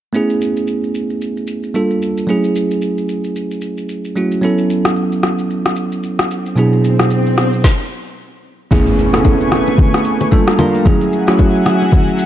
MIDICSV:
0, 0, Header, 1, 6, 480
1, 0, Start_track
1, 0, Tempo, 535714
1, 127, Time_signature, 4, 2, 24, 8
1, 10982, End_track
2, 0, Start_track
2, 0, Title_t, "Analog synth pad"
2, 0, Program_c, 0, 89
2, 7808, Note_on_c, 0, 71, 73
2, 7808, Note_on_c, 0, 80, 77
2, 7808, Note_on_c, 0, 85, 95
2, 7809, Note_on_c, 0, 57, 84
2, 9233, Note_off_c, 0, 71, 0
2, 9234, Note_off_c, 0, 57, 0
2, 9234, Note_off_c, 0, 80, 0
2, 9234, Note_off_c, 0, 85, 0
2, 9247, Note_on_c, 0, 57, 72
2, 9248, Note_on_c, 0, 55, 76
2, 9248, Note_on_c, 0, 77, 71
2, 9248, Note_on_c, 0, 82, 85
2, 9723, Note_off_c, 0, 55, 0
2, 9723, Note_off_c, 0, 57, 0
2, 9723, Note_off_c, 0, 77, 0
2, 9723, Note_off_c, 0, 82, 0
2, 9727, Note_on_c, 0, 54, 85
2, 9727, Note_on_c, 0, 76, 75
2, 9727, Note_on_c, 0, 78, 97
2, 9727, Note_on_c, 0, 80, 78
2, 10982, Note_off_c, 0, 54, 0
2, 10982, Note_off_c, 0, 76, 0
2, 10982, Note_off_c, 0, 78, 0
2, 10982, Note_off_c, 0, 80, 0
2, 10982, End_track
3, 0, Start_track
3, 0, Title_t, "Tine electric piano"
3, 0, Program_c, 1, 4
3, 114, Note_on_c, 1, 57, 74
3, 122, Note_on_c, 1, 59, 63
3, 130, Note_on_c, 1, 61, 64
3, 138, Note_on_c, 1, 64, 62
3, 146, Note_on_c, 1, 68, 78
3, 294, Control_c, 1, 64, 127
3, 1532, Note_off_c, 1, 57, 0
3, 1536, Note_off_c, 1, 59, 0
3, 1540, Note_off_c, 1, 61, 0
3, 1544, Note_off_c, 1, 64, 0
3, 1548, Note_off_c, 1, 68, 0
3, 1561, Note_on_c, 1, 55, 68
3, 1566, Note_on_c, 1, 58, 62
3, 1570, Note_on_c, 1, 62, 63
3, 1574, Note_on_c, 1, 65, 64
3, 1578, Note_on_c, 1, 69, 74
3, 1580, Control_c, 1, 64, 0
3, 1730, Control_c, 1, 64, 127
3, 2033, Note_on_c, 1, 54, 74
3, 2041, Note_on_c, 1, 57, 64
3, 2045, Note_off_c, 1, 55, 0
3, 2047, Note_off_c, 1, 58, 0
3, 2049, Note_off_c, 1, 62, 0
3, 2049, Note_on_c, 1, 61, 65
3, 2051, Note_off_c, 1, 65, 0
3, 2053, Note_off_c, 1, 69, 0
3, 2057, Note_on_c, 1, 64, 64
3, 2061, Control_c, 1, 64, 0
3, 2065, Note_on_c, 1, 68, 78
3, 2235, Control_c, 1, 64, 127
3, 3687, Note_off_c, 1, 54, 0
3, 3691, Note_off_c, 1, 57, 0
3, 3695, Note_off_c, 1, 61, 0
3, 3699, Note_off_c, 1, 64, 0
3, 3703, Note_off_c, 1, 68, 0
3, 3722, Note_on_c, 1, 54, 53
3, 3726, Note_on_c, 1, 57, 50
3, 3730, Note_on_c, 1, 61, 50
3, 3734, Note_on_c, 1, 64, 48
3, 3738, Note_on_c, 1, 66, 58
3, 3943, Note_off_c, 1, 54, 0
3, 3954, Note_on_c, 1, 54, 74
3, 3959, Note_off_c, 1, 61, 0
3, 3962, Note_on_c, 1, 59, 64
3, 3967, Note_off_c, 1, 57, 0
3, 3967, Note_off_c, 1, 64, 0
3, 3970, Note_on_c, 1, 61, 64
3, 3973, Note_off_c, 1, 66, 0
3, 3977, Control_c, 1, 64, 0
3, 3978, Note_on_c, 1, 64, 67
3, 3986, Note_on_c, 1, 69, 78
3, 4147, Control_c, 1, 64, 127
3, 5845, Note_off_c, 1, 54, 0
3, 5849, Note_off_c, 1, 59, 0
3, 5853, Note_off_c, 1, 61, 0
3, 5857, Note_off_c, 1, 64, 0
3, 5861, Note_off_c, 1, 69, 0
3, 5874, Note_on_c, 1, 47, 73
3, 5880, Note_on_c, 1, 54, 67
3, 5886, Note_on_c, 1, 59, 67
3, 5893, Note_on_c, 1, 62, 66
3, 5898, Control_c, 1, 64, 0
3, 5899, Note_on_c, 1, 64, 69
3, 5905, Note_on_c, 1, 68, 79
3, 6039, Control_c, 1, 64, 127
3, 6821, Note_off_c, 1, 47, 0
3, 6824, Note_off_c, 1, 54, 0
3, 6828, Note_off_c, 1, 59, 0
3, 6831, Note_off_c, 1, 62, 0
3, 6834, Note_off_c, 1, 64, 0
3, 6837, Note_off_c, 1, 68, 0
3, 6858, Control_c, 1, 64, 0
3, 7802, Note_on_c, 1, 57, 81
3, 7806, Note_on_c, 1, 59, 74
3, 7810, Note_on_c, 1, 61, 78
3, 7814, Note_on_c, 1, 64, 76
3, 7819, Note_on_c, 1, 68, 93
3, 7958, Control_c, 1, 64, 127
3, 8101, Note_off_c, 1, 57, 0
3, 8103, Note_off_c, 1, 59, 0
3, 8105, Note_off_c, 1, 61, 0
3, 8107, Note_off_c, 1, 64, 0
3, 8109, Note_off_c, 1, 68, 0
3, 8182, Note_on_c, 1, 57, 81
3, 8186, Note_on_c, 1, 59, 72
3, 8189, Note_on_c, 1, 60, 61
3, 8193, Note_on_c, 1, 64, 75
3, 8198, Note_on_c, 1, 69, 90
3, 8236, Note_off_c, 1, 60, 0
3, 8247, Note_on_c, 1, 61, 74
3, 8945, Note_off_c, 1, 57, 0
3, 8947, Note_off_c, 1, 59, 0
3, 8950, Note_off_c, 1, 64, 0
3, 8953, Note_off_c, 1, 69, 0
3, 8977, Note_off_c, 1, 61, 0
3, 9242, Note_on_c, 1, 55, 88
3, 9245, Note_on_c, 1, 58, 78
3, 9250, Note_on_c, 1, 62, 78
3, 9254, Note_on_c, 1, 65, 80
3, 9258, Control_c, 1, 64, 0
3, 9258, Note_on_c, 1, 69, 97
3, 9401, Control_c, 1, 64, 127
3, 9445, Note_off_c, 1, 55, 0
3, 9446, Note_off_c, 1, 58, 0
3, 9448, Note_off_c, 1, 62, 0
3, 9450, Note_off_c, 1, 65, 0
3, 9452, Note_off_c, 1, 69, 0
3, 9483, Note_on_c, 1, 55, 81
3, 9486, Note_on_c, 1, 58, 73
3, 9491, Note_on_c, 1, 62, 73
3, 9495, Note_on_c, 1, 65, 75
3, 9499, Note_on_c, 1, 70, 91
3, 9685, Note_off_c, 1, 55, 0
3, 9687, Note_off_c, 1, 58, 0
3, 9689, Note_off_c, 1, 62, 0
3, 9691, Note_off_c, 1, 65, 0
3, 9693, Note_off_c, 1, 70, 0
3, 9723, Note_on_c, 1, 54, 84
3, 9727, Note_on_c, 1, 57, 76
3, 9731, Note_on_c, 1, 61, 73
3, 9735, Note_on_c, 1, 64, 76
3, 9739, Note_on_c, 1, 68, 94
3, 9740, Control_c, 1, 64, 0
3, 9891, Control_c, 1, 64, 127
3, 10021, Note_off_c, 1, 54, 0
3, 10023, Note_off_c, 1, 57, 0
3, 10025, Note_off_c, 1, 61, 0
3, 10027, Note_off_c, 1, 64, 0
3, 10029, Note_off_c, 1, 68, 0
3, 10102, Note_on_c, 1, 54, 80
3, 10106, Note_on_c, 1, 57, 74
3, 10110, Note_on_c, 1, 61, 73
3, 10114, Note_on_c, 1, 64, 75
3, 10118, Note_on_c, 1, 66, 91
3, 10865, Note_off_c, 1, 54, 0
3, 10867, Note_off_c, 1, 57, 0
3, 10869, Note_off_c, 1, 61, 0
3, 10871, Note_off_c, 1, 64, 0
3, 10873, Note_off_c, 1, 66, 0
3, 10982, End_track
4, 0, Start_track
4, 0, Title_t, "Impact"
4, 0, Program_c, 2, 103
4, 7808, Note_on_c, 2, 60, 82
4, 9728, Note_off_c, 2, 60, 0
4, 10982, End_track
5, 0, Start_track
5, 0, Title_t, "Swell"
5, 0, Program_c, 3, 103
5, 3967, Note_on_c, 3, 60, 81
5, 6847, Note_off_c, 3, 60, 0
5, 10982, End_track
6, 0, Start_track
6, 0, Title_t, "Drums"
6, 128, Note_on_c, 9, 82, 73
6, 218, Note_off_c, 9, 82, 0
6, 267, Note_on_c, 9, 82, 50
6, 356, Note_off_c, 9, 82, 0
6, 371, Note_on_c, 9, 82, 83
6, 461, Note_off_c, 9, 82, 0
6, 509, Note_on_c, 9, 82, 57
6, 599, Note_off_c, 9, 82, 0
6, 604, Note_on_c, 9, 82, 72
6, 694, Note_off_c, 9, 82, 0
6, 749, Note_on_c, 9, 82, 45
6, 838, Note_off_c, 9, 82, 0
6, 847, Note_on_c, 9, 82, 71
6, 937, Note_off_c, 9, 82, 0
6, 985, Note_on_c, 9, 82, 48
6, 1075, Note_off_c, 9, 82, 0
6, 1090, Note_on_c, 9, 82, 67
6, 1179, Note_off_c, 9, 82, 0
6, 1227, Note_on_c, 9, 82, 51
6, 1316, Note_off_c, 9, 82, 0
6, 1320, Note_on_c, 9, 82, 91
6, 1409, Note_off_c, 9, 82, 0
6, 1463, Note_on_c, 9, 82, 59
6, 1553, Note_off_c, 9, 82, 0
6, 1565, Note_on_c, 9, 82, 66
6, 1654, Note_off_c, 9, 82, 0
6, 1706, Note_on_c, 9, 82, 52
6, 1796, Note_off_c, 9, 82, 0
6, 1812, Note_on_c, 9, 82, 82
6, 1901, Note_off_c, 9, 82, 0
6, 1948, Note_on_c, 9, 82, 59
6, 2038, Note_off_c, 9, 82, 0
6, 2048, Note_on_c, 9, 82, 71
6, 2138, Note_off_c, 9, 82, 0
6, 2186, Note_on_c, 9, 82, 49
6, 2276, Note_off_c, 9, 82, 0
6, 2291, Note_on_c, 9, 82, 85
6, 2381, Note_off_c, 9, 82, 0
6, 2429, Note_on_c, 9, 82, 59
6, 2519, Note_off_c, 9, 82, 0
6, 2524, Note_on_c, 9, 82, 72
6, 2613, Note_off_c, 9, 82, 0
6, 2669, Note_on_c, 9, 82, 47
6, 2758, Note_off_c, 9, 82, 0
6, 2767, Note_on_c, 9, 82, 69
6, 2856, Note_off_c, 9, 82, 0
6, 2905, Note_on_c, 9, 82, 48
6, 2994, Note_off_c, 9, 82, 0
6, 3009, Note_on_c, 9, 82, 69
6, 3099, Note_off_c, 9, 82, 0
6, 3146, Note_on_c, 9, 82, 49
6, 3236, Note_off_c, 9, 82, 0
6, 3239, Note_on_c, 9, 82, 93
6, 3328, Note_off_c, 9, 82, 0
6, 3384, Note_on_c, 9, 82, 57
6, 3473, Note_off_c, 9, 82, 0
6, 3484, Note_on_c, 9, 82, 66
6, 3574, Note_off_c, 9, 82, 0
6, 3626, Note_on_c, 9, 82, 49
6, 3716, Note_off_c, 9, 82, 0
6, 3731, Note_on_c, 9, 82, 85
6, 3821, Note_off_c, 9, 82, 0
6, 3868, Note_on_c, 9, 82, 56
6, 3957, Note_off_c, 9, 82, 0
6, 3968, Note_on_c, 9, 82, 77
6, 4057, Note_off_c, 9, 82, 0
6, 4105, Note_on_c, 9, 82, 54
6, 4195, Note_off_c, 9, 82, 0
6, 4211, Note_on_c, 9, 82, 82
6, 4300, Note_off_c, 9, 82, 0
6, 4347, Note_on_c, 9, 37, 93
6, 4349, Note_on_c, 9, 82, 58
6, 4437, Note_off_c, 9, 37, 0
6, 4438, Note_off_c, 9, 82, 0
6, 4443, Note_on_c, 9, 82, 75
6, 4533, Note_off_c, 9, 82, 0
6, 4589, Note_on_c, 9, 82, 46
6, 4678, Note_off_c, 9, 82, 0
6, 4687, Note_on_c, 9, 82, 69
6, 4689, Note_on_c, 9, 37, 78
6, 4777, Note_off_c, 9, 82, 0
6, 4779, Note_off_c, 9, 37, 0
6, 4825, Note_on_c, 9, 82, 46
6, 4915, Note_off_c, 9, 82, 0
6, 4930, Note_on_c, 9, 82, 70
6, 5020, Note_off_c, 9, 82, 0
6, 5068, Note_on_c, 9, 82, 50
6, 5069, Note_on_c, 9, 37, 81
6, 5157, Note_off_c, 9, 82, 0
6, 5159, Note_off_c, 9, 37, 0
6, 5160, Note_on_c, 9, 82, 91
6, 5250, Note_off_c, 9, 82, 0
6, 5305, Note_on_c, 9, 82, 58
6, 5394, Note_off_c, 9, 82, 0
6, 5406, Note_on_c, 9, 82, 66
6, 5495, Note_off_c, 9, 82, 0
6, 5547, Note_on_c, 9, 82, 50
6, 5548, Note_on_c, 9, 37, 91
6, 5637, Note_off_c, 9, 82, 0
6, 5638, Note_off_c, 9, 37, 0
6, 5652, Note_on_c, 9, 82, 86
6, 5742, Note_off_c, 9, 82, 0
6, 5789, Note_on_c, 9, 82, 57
6, 5878, Note_off_c, 9, 82, 0
6, 5888, Note_on_c, 9, 82, 74
6, 5978, Note_off_c, 9, 82, 0
6, 6027, Note_on_c, 9, 82, 53
6, 6116, Note_off_c, 9, 82, 0
6, 6132, Note_on_c, 9, 82, 86
6, 6221, Note_off_c, 9, 82, 0
6, 6267, Note_on_c, 9, 37, 94
6, 6269, Note_on_c, 9, 82, 57
6, 6357, Note_off_c, 9, 37, 0
6, 6359, Note_off_c, 9, 82, 0
6, 6364, Note_on_c, 9, 82, 75
6, 6453, Note_off_c, 9, 82, 0
6, 6509, Note_on_c, 9, 82, 48
6, 6598, Note_off_c, 9, 82, 0
6, 6608, Note_on_c, 9, 82, 70
6, 6610, Note_on_c, 9, 37, 78
6, 6697, Note_off_c, 9, 82, 0
6, 6699, Note_off_c, 9, 37, 0
6, 6745, Note_on_c, 9, 82, 46
6, 6835, Note_off_c, 9, 82, 0
6, 6847, Note_on_c, 9, 38, 83
6, 6848, Note_on_c, 9, 36, 105
6, 6937, Note_off_c, 9, 36, 0
6, 6937, Note_off_c, 9, 38, 0
6, 7807, Note_on_c, 9, 36, 106
6, 7808, Note_on_c, 9, 82, 78
6, 7810, Note_on_c, 9, 64, 70
6, 7897, Note_off_c, 9, 36, 0
6, 7898, Note_off_c, 9, 82, 0
6, 7899, Note_off_c, 9, 64, 0
6, 7947, Note_on_c, 9, 82, 53
6, 8036, Note_off_c, 9, 82, 0
6, 8051, Note_on_c, 9, 82, 86
6, 8141, Note_off_c, 9, 82, 0
6, 8188, Note_on_c, 9, 37, 94
6, 8190, Note_on_c, 9, 82, 60
6, 8277, Note_off_c, 9, 37, 0
6, 8279, Note_off_c, 9, 82, 0
6, 8284, Note_on_c, 9, 82, 77
6, 8286, Note_on_c, 9, 60, 72
6, 8287, Note_on_c, 9, 36, 93
6, 8374, Note_off_c, 9, 82, 0
6, 8375, Note_off_c, 9, 60, 0
6, 8377, Note_off_c, 9, 36, 0
6, 8429, Note_on_c, 9, 82, 49
6, 8518, Note_off_c, 9, 82, 0
6, 8527, Note_on_c, 9, 61, 52
6, 8527, Note_on_c, 9, 82, 74
6, 8529, Note_on_c, 9, 37, 82
6, 8616, Note_off_c, 9, 61, 0
6, 8616, Note_off_c, 9, 82, 0
6, 8618, Note_off_c, 9, 37, 0
6, 8665, Note_on_c, 9, 82, 49
6, 8671, Note_on_c, 9, 60, 46
6, 8755, Note_off_c, 9, 82, 0
6, 8761, Note_off_c, 9, 60, 0
6, 8765, Note_on_c, 9, 36, 122
6, 8769, Note_on_c, 9, 64, 75
6, 8770, Note_on_c, 9, 82, 70
6, 8854, Note_off_c, 9, 36, 0
6, 8859, Note_off_c, 9, 64, 0
6, 8859, Note_off_c, 9, 82, 0
6, 8907, Note_on_c, 9, 82, 51
6, 8908, Note_on_c, 9, 37, 87
6, 8996, Note_off_c, 9, 82, 0
6, 8998, Note_off_c, 9, 37, 0
6, 8999, Note_on_c, 9, 82, 99
6, 9089, Note_off_c, 9, 82, 0
6, 9143, Note_on_c, 9, 82, 58
6, 9146, Note_on_c, 9, 61, 70
6, 9233, Note_off_c, 9, 82, 0
6, 9235, Note_off_c, 9, 61, 0
6, 9244, Note_on_c, 9, 82, 66
6, 9245, Note_on_c, 9, 60, 72
6, 9246, Note_on_c, 9, 36, 87
6, 9333, Note_off_c, 9, 82, 0
6, 9335, Note_off_c, 9, 60, 0
6, 9336, Note_off_c, 9, 36, 0
6, 9386, Note_on_c, 9, 82, 51
6, 9387, Note_on_c, 9, 37, 97
6, 9475, Note_off_c, 9, 82, 0
6, 9476, Note_off_c, 9, 37, 0
6, 9487, Note_on_c, 9, 61, 82
6, 9487, Note_on_c, 9, 64, 80
6, 9492, Note_on_c, 9, 82, 86
6, 9577, Note_off_c, 9, 61, 0
6, 9577, Note_off_c, 9, 64, 0
6, 9581, Note_off_c, 9, 82, 0
6, 9628, Note_on_c, 9, 82, 62
6, 9718, Note_off_c, 9, 82, 0
6, 9727, Note_on_c, 9, 36, 114
6, 9728, Note_on_c, 9, 82, 80
6, 9730, Note_on_c, 9, 64, 72
6, 9817, Note_off_c, 9, 36, 0
6, 9817, Note_off_c, 9, 82, 0
6, 9819, Note_off_c, 9, 64, 0
6, 9866, Note_on_c, 9, 82, 54
6, 9955, Note_off_c, 9, 82, 0
6, 9971, Note_on_c, 9, 82, 89
6, 10060, Note_off_c, 9, 82, 0
6, 10107, Note_on_c, 9, 37, 96
6, 10109, Note_on_c, 9, 82, 61
6, 10197, Note_off_c, 9, 37, 0
6, 10198, Note_off_c, 9, 82, 0
6, 10203, Note_on_c, 9, 82, 74
6, 10205, Note_on_c, 9, 60, 67
6, 10207, Note_on_c, 9, 36, 90
6, 10293, Note_off_c, 9, 82, 0
6, 10295, Note_off_c, 9, 60, 0
6, 10296, Note_off_c, 9, 36, 0
6, 10349, Note_on_c, 9, 82, 48
6, 10438, Note_off_c, 9, 82, 0
6, 10446, Note_on_c, 9, 61, 53
6, 10447, Note_on_c, 9, 82, 73
6, 10449, Note_on_c, 9, 37, 80
6, 10536, Note_off_c, 9, 61, 0
6, 10537, Note_off_c, 9, 82, 0
6, 10538, Note_off_c, 9, 37, 0
6, 10585, Note_on_c, 9, 82, 50
6, 10592, Note_on_c, 9, 60, 44
6, 10675, Note_off_c, 9, 82, 0
6, 10681, Note_off_c, 9, 60, 0
6, 10685, Note_on_c, 9, 36, 116
6, 10689, Note_on_c, 9, 64, 73
6, 10690, Note_on_c, 9, 82, 68
6, 10774, Note_off_c, 9, 36, 0
6, 10778, Note_off_c, 9, 64, 0
6, 10780, Note_off_c, 9, 82, 0
6, 10827, Note_on_c, 9, 82, 51
6, 10917, Note_off_c, 9, 82, 0
6, 10920, Note_on_c, 9, 82, 100
6, 10982, Note_off_c, 9, 82, 0
6, 10982, End_track
0, 0, End_of_file